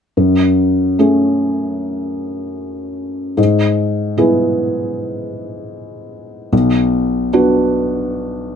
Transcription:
0.17 0.96 F#2 soft
0.99 3.34 A3 soft
0.99 3.34 C#4 soft
0.99 3.34 G#4 soft
3.37 4.14 G#2 soft
4.17 6.49 B3 soft
4.17 6.49 E4 soft
4.17 6.49 G#4 soft
6.53 7.29 B1 soft
7.33 8.56 B3 soft
7.33 8.56 D4 soft
7.33 8.56 F#4 soft

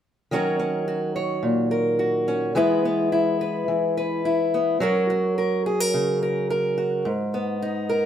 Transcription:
0.31 2.53 D#3 medium
0.31 2.55 F#3 soft
0.31 0.59 C#4 soft
0.31 0.87 F#4 soft
0.31 1.15 A#4 soft
0.59 2.27 C#4 soft
0.88 1.98 F#4 soft
1.16 1.71 C#5 soft
1.43 2.52 A#2 soft
1.71 2.52 A#4 soft
1.99 2.52 F#4 soft
2.28 2.56 C#4 soft
2.55 3.67 E3 medium
2.55 4.77 G#3 soft
2.55 2.84 B3 soft
2.55 3.11 E4 soft
2.55 3.40 B4 soft
2.85 4.53 B3 soft
3.12 4.24 E4 soft
3.41 3.96 B4 soft
3.68 4.77 E3 soft
3.97 4.78 B4 soft
4.25 4.77 E4 soft
4.54 4.81 B3 soft
4.80 7.05 F#3 medium
4.80 7.02 C#4 soft
4.80 5.09 F#4 medium
4.80 5.37 A#4 medium
5.10 6.76 F#4 soft
5.38 5.66 A#4 soft
5.66 5.80 G#4 soft
5.80 6.21 A#4 soft
5.94 7.05 C#3 soft
6.23 6.50 A#4 soft
6.50 7.08 A#4 soft
6.78 7.02 F#4 soft
7.05 8.06 G#2 medium
7.34 8.06 B3 soft
7.62 8.06 D#4 soft
7.89 8.06 A#4 soft

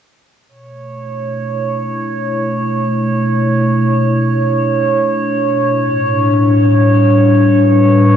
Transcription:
0.48 5.70 B2 medium
0.48 8.17 C#5 medium
0.62 5.69 A3 medium
0.75 7.79 E4 medium
0.96 8.17 D4 medium
2.47 7.41 C#5 medium
5.69 8.17 A2 medium
6.07 8.17 G3 medium
7.21 8.17 B4 medium

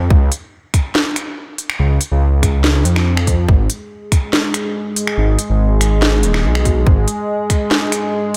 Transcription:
0.10 0.30 C#2 loud
0.10 kick loud
0.32 closed hi-hat medium
0.74 finger snap medium
0.74 kick medium
0.74 closed hi-hat medium
0.95 snare loud
1.16 finger snap medium
1.16 closed hi-hat medium
1.58 closed hi-hat medium
1.70 finger snap medium
1.79 1.99 C#2 loud
2.01 closed hi-hat medium
2.12 2.84 C#2 loud
2.43 finger snap medium
2.43 kick medium
2.43 closed hi-hat medium
2.64 snare loud
2.85 3.47 F2 medium
2.85 closed hi-hat medium
2.96 finger snap medium
2.96 snare soft
3.17 finger snap medium
3.27 kick medium
3.27 closed hi-hat medium
3.48 3.68 G#1 loud
3.48 8.37 G#3 medium
3.48 8.37 G#4 medium
3.48 kick loud
3.70 closed hi-hat medium
4.12 finger snap medium
4.12 kick medium
4.12 closed hi-hat medium
4.33 snare loud
4.54 finger snap medium
4.54 closed hi-hat medium
4.96 closed hi-hat medium
5.07 finger snap medium
5.18 5.37 G#1 loud
5.39 closed hi-hat medium
5.50 6.25 G#1 medium
5.81 finger snap medium
5.81 closed hi-hat medium
6.02 snare loud
6.23 6.46 D#1 medium
6.23 closed hi-hat medium
6.34 finger snap medium
6.34 snare soft
6.44 6.85 B1 medium
6.55 finger snap medium
6.65 kick medium
6.65 closed hi-hat medium
6.87 7.06 G#1 loud
6.87 kick loud
7.08 closed hi-hat medium
7.50 finger snap medium
7.50 kick medium
7.50 closed hi-hat medium
7.71 snare loud
7.92 finger snap medium
7.92 closed hi-hat medium

